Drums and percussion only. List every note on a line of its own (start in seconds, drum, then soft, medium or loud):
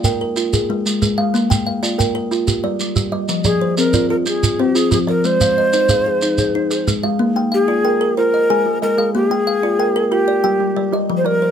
0.04 shekere medium
0.37 shekere medium
0.53 shekere medium
0.86 shekere medium
1.02 shekere medium
1.35 shekere medium
1.51 shekere medium
1.84 shekere medium
2.00 shekere medium
2.32 shekere soft
2.48 shekere medium
2.80 shekere medium
2.96 shekere medium
3.29 shekere medium
3.44 shekere medium
3.78 shekere medium
3.93 shekere medium
4.26 shekere medium
4.43 shekere medium
4.76 shekere medium
4.92 shekere medium
5.24 shekere medium
5.41 shekere medium
5.73 shekere medium
5.89 shekere medium
6.22 shekere medium
6.38 shekere medium
6.71 shekere medium
6.88 shekere medium